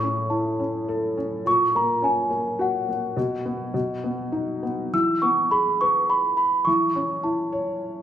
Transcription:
Already playing: A2 C#6
0.03 C#4
0.30 E4 A5
0.60 C#4
0.88 A4
1.17 C#4
1.45 A#2 C#6
1.75 A#3 A#5
2.02 C#4 G#5
2.30 A#3
2.59 F#4 F#5
2.89 A#3
3.17 B2
3.46 B3
3.74 B2
4.04 B3
4.32 D#4
4.63 B3
4.93 E3 E6
5.22 B3 C#6
5.51 G#4 B5
5.81 B4 C#6
6.10 B5
6.37 B5
6.65 E3 C#6
6.96 C#4
7.24 E4 A5
7.52 C#5

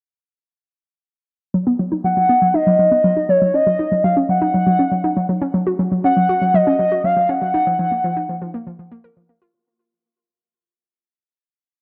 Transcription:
1.54 F#3
1.67 B3
1.79 F#3
1.92 D#4
2.04 F#3 F#5
2.17 F#3
2.29 B3
2.42 F#3
2.54 D#4 D#5
2.67 F#3
2.79 F#3
2.92 B3
3.04 F#3
3.17 D#4
3.29 F#3 C#5
3.42 F#3
3.54 C#4 D#5
3.67 F#3
3.79 D#4
3.92 F#3
4.04 F#3 F5
4.17 C#4
4.29 F#3 F#5
4.42 D#4
4.54 F#3
4.67 F#3
4.79 C#4
4.92 F#3
5.04 D#4
5.17 F#3
5.29 F#3
5.42 C#4
5.54 F#3
5.67 F#4
5.79 F#3
5.92 F#3
6.04 C#4 F#5
6.17 F#3
6.29 F#4
6.42 F#3
6.54 F#3 D#5
6.67 C#4
6.79 F#3
6.92 F#4
7.04 F#3 F5
7.17 F#3
7.29 C#4 F#5
7.42 F#3
7.54 D#4
7.67 F3
7.79 F3
7.92 A#3
8.04 F3
8.17 D#4
8.29 F3
8.42 F3
8.54 A#3
8.67 F3
8.79 F3
8.92 A#3
9.04 A#4
9.17 F3
9.29 A#3
9.42 F4

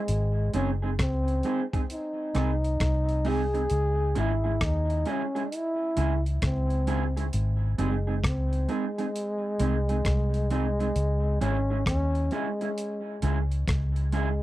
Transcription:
Already playing: G#3
0.08 G#1, closed hi-hat
0.53 F#1 G#3 C4 C#4 D#4 G#4, closed hi-hat
0.82 G#3 C4 D#4 G#4
0.99 C#2 C4, kick, cross-stick, closed hi-hat
1.28 closed hi-hat
1.43 G#3 C4 D#4 G#4, closed hi-hat
1.73 G#3 C4 D#4 G#4, kick, closed hi-hat
1.90 D#4, closed hi-hat
2.35 C2 G#3 C4 D#4 G#4, cross-stick, closed hi-hat
2.64 closed hi-hat
2.80 C2, kick, cross-stick, closed hi-hat
3.09 closed hi-hat
3.25 G#3 C4 D#4 G#4, open hi-hat
3.54 G#3 C4 D#4 G#4, closed hi-hat
3.70 C#2, closed hi-hat
4.15 G#1 G#3 C#4 E4 G#4, closed hi-hat
4.44 G#3 C#4 E4 G#4
4.61 D#2 D#4, kick, cross-stick, closed hi-hat
4.90 closed hi-hat
5.05 G#3 C#4 E4 G#4, closed hi-hat
5.11 C#4
5.35 G#3 C#4 E4 G#4, closed hi-hat
5.52 E4, closed hi-hat
5.97 C#2 G#3 C#4 E4 G#4, closed hi-hat
6.26 closed hi-hat
6.42 C#2, kick, cross-stick, closed hi-hat
6.46 C4
6.70 closed hi-hat
6.87 G#3 C#4 E4 G#4, closed hi-hat
7.17 G#3 C#4 E4 G#4, closed hi-hat
7.33 G#1, closed hi-hat
7.78 F#1 G#3 C4 D#4 G#4, closed hi-hat
8.07 G#3 C4 D#4 G#4
8.24 C#2 C4, kick, cross-stick, closed hi-hat
8.53 closed hi-hat
8.68 G#3 C4 D#4 G#4, closed hi-hat
8.98 G#3 C4 D#4 G#4, closed hi-hat
9.16 closed hi-hat
9.59 C2 G#3 C4 D#4 G#4, closed hi-hat
9.89 G#3 C4 D#4 G#4, closed hi-hat
10.05 C2, kick, cross-stick, closed hi-hat
10.34 closed hi-hat
10.50 G#3 C4 D#4 G#4, closed hi-hat
10.80 G#3 C4 D#4 G#4, closed hi-hat
10.96 C#2, closed hi-hat
11.41 G#1 G#3 C#4 E4 G#4, closed hi-hat
11.70 G#3 C#4 E4 G#4
11.86 D#2 C#4, kick, cross-stick, closed hi-hat
12.15 closed hi-hat
12.31 G#3 C#4 E4 G#4, closed hi-hat
12.61 G#3 C#4 E4 G#4, closed hi-hat
12.78 closed hi-hat
13.22 C#2 G#3 C#4 E4 G#4, closed hi-hat
13.51 closed hi-hat
13.68 C#2, kick, cross-stick, closed hi-hat
13.96 closed hi-hat
14.12 G#3 C#4 E4 G#4, closed hi-hat

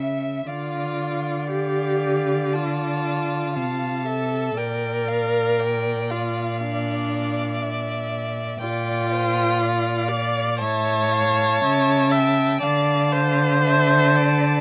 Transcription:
Already playing: C#3 E5
0.47 D3 F4 D5 F5
1.50 G4 F5
2.53 F4 A5
3.54 C3 F5 A5
4.05 A4 E5
4.56 A#2 A#4 D5 G5
5.08 F5
5.59 D5 G5
6.11 F4 F5
6.61 D4 D5
7.61 E5
8.60 A#2 F4 D5 G5
9.12 C5
9.59 D5 F5
10.09 D5
10.59 A2 C#5 E5 A5
11.12 F5
11.62 C#3 E5
12.12 E5 G5
12.60 D3 D5 F5 A5
13.12 C5
13.65 E5 A5
14.16 D5

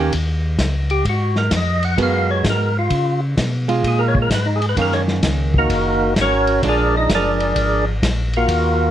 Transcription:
Already playing: D#2
0.00 D#3 A#3 C#4 G4
0.12 D#2, kick, ride
0.58 C#2, kick, snare, hi-hat pedal, ride
0.90 G4, ride
1.05 G#2, kick, ride
1.09 F#4
1.36 A#4, snare
1.51 F2, kick, snare, hi-hat pedal, ride
1.57 D#5
1.83 F#5, ride
1.97 F#2 G#3 B3 F#4 A#4, kick, ride
2.03 F5
2.31 C#5
2.44 G#2, kick, snare, hi-hat pedal, ride
2.50 A#4
2.79 F4
2.90 C#3, kick, ride
3.37 B2, kick, snare, hi-hat pedal, ride
3.68 G#3 F4, ride
3.84 A#2, kick, ride
3.88 G#4
3.99 A#4
4.08 C#5
4.15 kick
4.22 A#4
4.30 G#2, kick, snare, hi-hat pedal, ride
4.34 B4
4.46 D#4
4.56 G#4
4.62 ride
4.69 B4
4.76 F#2 D#3 A#3 C#4, kick, ride
4.82 A#4
4.92 C#5, snare
5.08 snare
5.23 C#2, kick, snare, hi-hat pedal, ride
5.54 kick
5.58 A#3 D#4 F#4 A#4
5.70 F#1, kick, ride
6.16 G#1, kick, snare, hi-hat pedal, ride
6.21 C#4 F#4 A#4 C#5
6.47 ride
6.62 A#1 F3 G#3 D4, kick, ride
6.68 D4 G#4 A#4 D5
6.97 D#4 D#5
7.09 F#1, kick, snare, hi-hat pedal, ride
7.15 D4 G#4 A#4 D5
7.40 ride
7.56 G#1, kick, ride
8.02 A#1, kick, snare, hi-hat pedal, ride
8.33 A#3 F4 A#4, ride
8.37 F#4
8.48 D#2, kick, ride

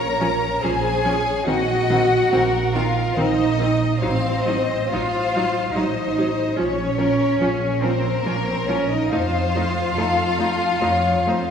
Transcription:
Already playing: A#1 A#4 C#5 A#5
0.20 F3 C#4
0.62 A#1 F3 C#4 G#4 C5 G#5
1.03 F3 C#4 C#5
1.46 A#1 D#3 C4 F#4 D#5 F#5
1.89 D#3 C4
2.32 A#1 D#3 C4 A#4
2.74 D#3 C4 F4 F5
3.14 A#1 D#3 C4 D#4 C5 D#5
3.56 D#3 C4 D#5
3.98 A1 F#3 C4 C5 F5
4.02 D#4
4.43 F#3 D#4 D#5
4.89 D#4 F4 C5 F5
4.93 A1 F#3
5.35 F#3 D#4
5.74 A1 F#3 D#4 C5 D#5
6.17 F#3 D#4
6.56 A#1 F3 C#4 C#5
6.98 F3 C#4 A#4
7.39 A#1 F3 C#4 G#4
7.81 F3 C4 C#4 A#4 C5
8.25 A#1 F3 A#3 C#4 A#4
8.46 C4 C5
8.68 F3 C#4 C#5
8.89 D#4 D#5
9.10 F2 A3 D#4 F4 C5 F5
9.55 A3 D#4
9.96 F2 A3 D#4 A4
10.38 A3 D#4
10.81 F2 A3 D#4 C#5
11.26 A3 D#4 C5

